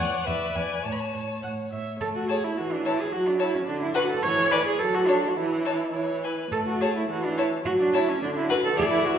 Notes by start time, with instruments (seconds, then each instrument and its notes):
Already playing: viola C#5
0.00 violin D5 F#5
0.25 cello E2, viola B4, violin D5 E5
0.55 cello E2, violin D5 G#5
0.83 cello A2, viola C#5, violin C#5 A5
0.92 violin B5
0.99 violin A5
1.14 cello A2, violin C#5
1.43 cello A2, violin C#5, viola F#5
1.72 cello A2, violin C#5, viola E5
2.00 viola A3, cello A4
2.16 cello F#4
2.29 cello G#4, violin C#5 A5
2.44 cello E4
2.57 viola E3, cello F#4
2.72 cello D4
2.85 cello E4, violin C#5 A5
3.00 cello G#4
3.12 viola F#3, cello F#4
3.27 cello D4
3.39 cello E4, violin C#5 A5
3.54 cello C#4
3.66 viola D3, cello D4
3.81 cello E4
3.94 cello F#4, violin B4 F#5
4.10 cello A4
4.22 viola E3, cello C#5
4.51 cello B4, violin D5 G#5
4.66 cello G#4
4.79 viola F#3, cello A4
4.94 cello F#4
5.07 cello D4, violin C#5 A5
5.29 cello F#4
5.36 viola E3, cello E4
5.65 violin C#5 A5
5.94 viola E3, violin C#5
6.23 violin B4 G#5
6.51 viola A3, cello A4
6.67 cello F#4
6.81 cello G#4, violin C#5 A5
6.96 cello E4
7.09 viola E3, cello F#4
7.25 cello D4
7.37 cello E4, violin C#5 A5
7.65 viola F#3, cello F#4
7.81 cello D4
7.93 cello E4, violin C#5 A5
8.08 cello C#4
8.21 viola D3, cello D4
8.36 cello E4
8.49 cello F#4, violin B4 F#5
8.64 cello A4
8.77 viola E3, cello G#4, violin D5 E5
8.91 cello E4
9.04 cello F#4